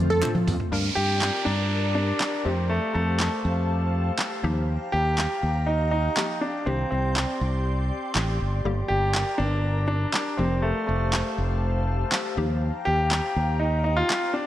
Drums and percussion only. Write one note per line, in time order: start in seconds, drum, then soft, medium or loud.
0.10 mid tom medium
0.22 clap medium
0.22 closed hi-hat medium
0.22 mid tom medium
0.35 mid tom medium
0.47 floor tom loud
0.47 open hi-hat medium
0.60 floor tom medium
1.21 snare loud
1.21 clap loud
2.20 snare medium
2.20 clap loud
3.19 snare medium
3.19 clap loud
4.18 snare medium
4.18 clap loud
5.18 snare medium
5.18 clap loud
6.17 snare medium
6.17 clap loud
7.16 snare medium
7.16 clap loud
8.15 snare medium
8.15 clap loud
9.14 snare loud
9.14 clap loud
10.13 snare medium
10.13 clap loud
11.13 snare loud
11.13 clap loud
12.12 snare medium
12.12 clap loud
13.11 snare medium
13.11 clap loud
14.10 snare medium
14.10 clap loud